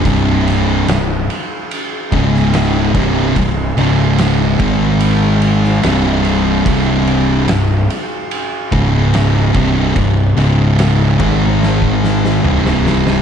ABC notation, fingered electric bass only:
X:1
M:4/4
L:1/8
Q:1/4=73
K:Cm
V:1 name="Fingered electric bass" clef=bass
C,,,2 C,,, z2 _D,,,2 C,,, | C,,, _D,,,2 A,,,3 C,,,2 | C,,,2 C,,, z2 _D,,,2 C,,, | C,,, _D,,,2 A,,,3 C,,,2 |]